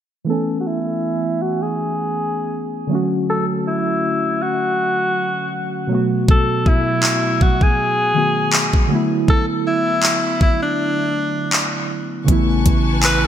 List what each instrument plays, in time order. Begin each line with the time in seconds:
0.25 synth keys E3 A3 B3
0.30 synth keys C#4 G#5, alto saxophone A4
0.60 alto saxophone F#4
0.67 alto saxophone E4
1.42 alto saxophone F#4
1.62 alto saxophone G#4
2.87 synth keys D3 F#3 A3
2.93 synth keys C#4 F#4
3.30 alto saxophone A4
3.68 alto saxophone E4
4.42 alto saxophone F#4
5.87 synth keys B2 F#3 A3
5.93 synth keys B3 F#4
6.29 alto saxophone A4, kick
6.66 alto saxophone E4, kick
7.03 clap
7.41 alto saxophone F#4, kick
7.61 alto saxophone G#4, kick
8.14 synth keys D#3 F#3 A3 B3 F#4
8.53 clap
8.73 kick
8.87 synth keys D3 F#3 A3
8.93 synth keys B3 E4
9.28 alto saxophone A4, kick
9.67 alto saxophone E4
10.03 clap
10.41 alto saxophone E4, kick
10.62 alto saxophone D4
11.53 clap
12.24 synth keys C#3 E3 A3, string section B4 G#5 A5 C#6, kick, closed hi-hat
12.28 808-style bass A1, synth keys B3 E4
12.66 808-style bass A1, kick, closed hi-hat
13.03 alto saxophone B4, clap, closed hi-hat